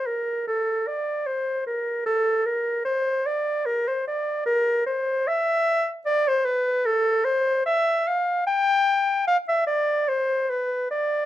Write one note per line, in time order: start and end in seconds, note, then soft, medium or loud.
0.06 0.47 A#4 medium
0.47 0.89 A4 medium
0.87 1.28 D5 medium
1.26 1.66 C5 medium
1.67 2.05 A#4 medium
2.06 2.47 A4 medium
2.46 2.85 A#4 medium
2.85 3.27 C5 medium
3.26 3.67 D5 medium
3.66 3.90 A#4 medium
3.88 4.07 C5 medium
4.08 4.46 D5 medium
4.46 4.86 A#4 loud
4.86 5.29 C5 medium
5.27 5.89 E5 loud
6.06 6.29 D5 loud
6.28 6.47 C5 loud
6.45 6.87 B4 loud
6.86 7.26 A4 loud
7.25 7.65 C5 loud
7.66 8.09 E5 loud
8.08 8.46 F5 medium
8.47 9.25 G5 loud
9.28 9.37 F5 loud
9.48 9.66 E5 loud
9.67 10.10 D5 loud
10.08 10.51 C5 loud
10.50 10.90 B4 medium
10.91 11.26 D5 loud